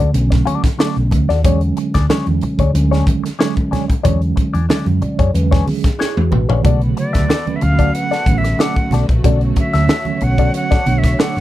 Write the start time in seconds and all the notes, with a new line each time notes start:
0.00 D2 F#4
0.13 B1 D3 F#3 A3 C#4, muted clean electric guitar stroke, closed hi-hat
0.30 muted clean electric guitar stroke, kick, snare, closed hi-hat
0.46 F#4 A4 D5, closed hi-hat, high conga
0.64 muted clean electric guitar stroke, kick, snare, closed hi-hat
0.78 D3 F#3 A3 C#4 F#4 A4 D5, snare, muted conga
0.97 B1, closed hi-hat
1.11 D2, muted clean electric guitar stroke, kick, closed hi-hat, high conga, low conga
1.29 D#2 F#4 A4 D5, snare, closed hi-hat
1.43 E2 D3 F#3 G#3 C#4 D4 G#4 C#5, kick, closed hi-hat
1.61 closed hi-hat
1.77 muted clean electric guitar stroke, closed hi-hat, muted conga
1.94 D2 D4 G#4 D5, kick, snare, closed hi-hat
2.08 D3 F#3 G#3 C#4 D4 G#4 C#5, snare, muted conga, high conga
2.26 E2, closed hi-hat, high conga
2.41 muted clean electric guitar stroke, closed hi-hat, muted conga, low conga
2.59 D2 D4 G#4 C#5, kick, closed hi-hat
2.73 D2 D3 F#3 G#3 C#4, muted clean electric guitar stroke, closed hi-hat
2.91 D4 G#4 C#5, snare, closed hi-hat
3.06 muted clean electric guitar stroke, kick, closed hi-hat, muted conga, high conga
3.24 muted clean electric guitar stroke, snare, closed hi-hat
3.39 D3 F#3 G#3 C#4 D4 G#4 C#5, snare
3.56 muted clean electric guitar stroke, kick, closed hi-hat
3.71 D4 G#4 C#5, snare, closed hi-hat, high conga, low conga
3.88 muted clean electric guitar stroke, kick, closed hi-hat
4.03 E2 D3 F#3 G#3 C#4 D4 G#4 C#5, kick, closed hi-hat, low conga
4.22 closed hi-hat
4.36 muted clean electric guitar stroke, kick, closed hi-hat
4.54 E2 D4 G#4 D5, closed hi-hat
4.69 D3 F#3 G#3 C#4 D4 G#4 D5, snare, muted conga, high conga
4.86 F#2, closed hi-hat, high conga
5.02 D5, muted clean electric guitar stroke, closed hi-hat, muted conga, low conga
5.19 F#2 D4 G#4 C#5, kick, closed hi-hat
5.33 E2 D3 F#3 G#3 C#4 B4, muted clean electric guitar stroke, closed hi-hat, muted conga
5.51 D4 G#4 C#5, kick, snare
5.67 G#4, open hi-hat, muted conga, high conga
5.84 muted clean electric guitar stroke, kick, snare, closed hi-hat
5.99 D4 E4 G#4 C#5, snare, muted conga
6.16 E2 F#4, high tom
6.31 A1 B4, muted clean electric guitar stroke, mid tom, muted conga, high conga, low conga
6.48 A#1 D4 G#4 C#5, floor tom
6.62 B1 B2 C#3 D3 F#3 A3 B3 F#4 A4 D5, kick, closed hi-hat, low conga
6.82 closed hi-hat
6.97 D5, muted clean electric guitar stroke, closed hi-hat, muted conga
7.13 D2 F#4 A4 E5, kick, snare, closed hi-hat
7.28 F#4 A4 D5, snare, high conga
7.46 D3 F#3 A3 C#4, closed hi-hat, high conga
7.56 E5
7.61 D2 D3 F#3 A3 C#4 F5, muted clean electric guitar stroke, closed hi-hat, muted conga, low conga
7.79 F#4 A4 D5, kick, closed hi-hat
7.94 F#5, muted clean electric guitar stroke, closed hi-hat
8.11 F#4 A4 D5, snare, closed hi-hat
8.26 A1 D3 F#3 A3 C#4, muted clean electric guitar stroke, kick, closed hi-hat, muted conga, high conga
8.38 E5
8.44 muted clean electric guitar stroke, snare, closed hi-hat
8.59 F#4 A4 D5 F#5, snare, muted conga
8.76 muted clean electric guitar stroke, kick, closed hi-hat
8.91 B1 F#4 A4 D5, snare, closed hi-hat, muted conga, high conga, low conga
9.09 A#1, muted clean electric guitar stroke, kick, closed hi-hat
9.23 B1 D3 F#3 A3 C#4 F#4 A4 C#5 D5, kick, closed hi-hat, muted conga, low conga
9.41 closed hi-hat
9.56 E5, muted clean electric guitar stroke, kick, closed hi-hat, muted conga
9.73 D2 F#4 A4 E5, snare, closed hi-hat
9.89 F#4 A4 E5, snare, muted conga, high conga
10.05 D3 F#3 A3 C#4, closed hi-hat, high conga
10.21 B1 D3 F#3 A3 C#4 F#5, muted clean electric guitar stroke, closed hi-hat, low conga
10.38 F#4 A4 D5, kick, closed hi-hat
10.54 F#5, muted clean electric guitar stroke, closed hi-hat
10.71 F#4 A4 D5, kick, snare, closed hi-hat
10.86 B1 D3 F#3 A3 D4, muted clean electric guitar stroke, closed hi-hat, muted conga, high conga
10.98 E5
11.04 muted clean electric guitar stroke, kick, snare, closed hi-hat
11.19 F#4 A4 D5 F#5, snare, muted conga
11.36 F#1, snare, closed hi-hat